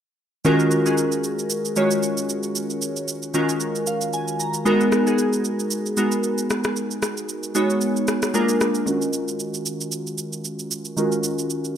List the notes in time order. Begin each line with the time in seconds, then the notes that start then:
0.45 D#3 G#3 C#4 F4 F#4 A#4, shaker
0.60 shaker
0.71 shaker
0.85 D#3 G#3 C#4 F4 F#4 G#4, shaker
0.98 shaker
1.12 shaker
1.24 shaker
1.39 shaker
1.50 shaker
1.65 shaker
1.76 D#3 G#3 C#4 F4 F#4 C#5, shaker
1.91 shaker
2.03 shaker
2.17 shaker
2.29 shaker
2.43 shaker
2.56 shaker
2.70 shaker
2.82 shaker
2.97 shaker
3.08 shaker
3.23 shaker
3.34 D#3 G#3 C#4 F4 F#4 A#4, shaker
3.49 shaker
3.60 shaker
3.75 shaker
3.87 F5, shaker
4.01 shaker
4.13 G#5, shaker
4.28 shaker
4.40 A#5, shaker
4.54 shaker
4.65 G#3 B3 D#4 F#4 A#4, shaker
4.81 shaker
4.92 cross-stick, shaker
5.06 G#3 B3 D#4 F#4 G#4, shaker
5.19 shaker
5.33 shaker
5.45 shaker
5.60 shaker
5.71 shaker
5.86 shaker
5.97 G#3 B3 D#4 F#4 A#4, shaker
6.12 shaker
6.24 shaker
6.38 shaker
6.50 cross-stick, shaker
6.64 cross-stick, shaker
6.76 shaker
6.91 shaker
7.03 cross-stick, shaker
7.17 shaker
7.29 shaker
7.43 shaker
7.55 G#3 B3 D#4 F#4 C#5, shaker
7.70 shaker
7.81 shaker
7.97 shaker
8.08 cross-stick, shaker
8.22 cross-stick, shaker
8.34 G#3 A#3 D4 F4 A#4, shaker
8.49 shaker
8.61 cross-stick, shaker
8.75 shaker
8.86 D#3 G#3 C#4 F4 F#4 A#4, shaker
9.02 shaker
9.13 shaker
9.28 shaker
9.40 shaker
9.54 shaker
9.66 shaker
9.81 shaker
9.92 shaker
10.07 shaker
10.18 shaker
10.33 shaker
10.45 shaker
10.59 shaker
10.71 shaker
10.85 shaker
10.97 D#3 G#3 C#4 F4 F#4 A#4, shaker
11.12 shaker
11.24 shaker
11.39 shaker
11.50 shaker
11.65 shaker